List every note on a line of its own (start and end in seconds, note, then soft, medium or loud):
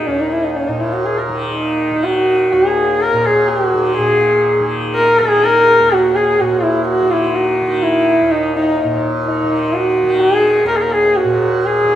0.00 0.68 A#2 soft
0.00 1.29 D#3 medium
0.07 2.52 D#2 medium
0.07 0.22 C#4 medium
0.20 0.33 D#4 medium
0.32 0.45 E4 medium
0.44 0.58 D#4 medium
0.56 0.69 C#4 medium
0.68 3.13 A#2 medium
0.68 0.82 D#4 medium
0.81 0.95 E4 medium
0.94 1.07 F#4 medium
1.05 1.20 G#4 medium
1.18 1.31 A#4 medium
1.29 1.91 D#3 medium
1.55 2.05 D#4 medium
1.91 3.74 D#3 medium
2.04 2.54 F#4 medium
2.52 5.79 D#2 medium
2.52 3.03 G#4 medium
3.01 3.27 A#4 medium
3.13 3.98 A#2 medium
3.25 3.51 G#4 medium
3.49 3.64 G4 medium
3.64 3.97 F#4 medium
3.74 4.60 D#3 medium
3.97 6.40 A#2 soft
3.97 4.66 G#4 medium
4.60 5.21 D#3 medium
4.96 5.21 A#4 medium
5.19 7.01 D#3 medium
5.19 5.46 G#4 medium
5.44 5.93 A#4 loud
5.79 8.21 D#2 medium
5.92 6.17 F#4 medium
6.15 6.42 G#4 medium
6.40 8.84 A#2 medium
6.40 6.65 F#4 medium
6.63 6.87 E4 medium
6.88 7.12 F#4 medium
7.02 7.62 D#3 medium
7.11 7.37 E4 medium
7.36 7.84 F#4 medium
7.62 9.43 D#3 medium
7.83 8.32 E4 medium
8.21 10.64 D#2 medium
8.31 8.55 D#4 medium
8.56 9.00 D#4 medium
8.84 11.24 A#2 medium
9.26 9.75 D#4 medium
9.43 10.03 D#3 soft
9.74 10.22 F#4 medium
10.03 11.84 D#3 medium
10.20 10.67 G#4 loud
10.64 11.95 D#2 medium
10.68 10.78 A#4 medium
10.76 10.82 G#4 medium
10.81 10.94 A#4 medium
10.92 11.18 G#4 medium
11.16 11.67 F#4 medium
11.24 11.95 A#2 medium
11.65 11.95 G#4 medium
11.84 11.95 D#3 medium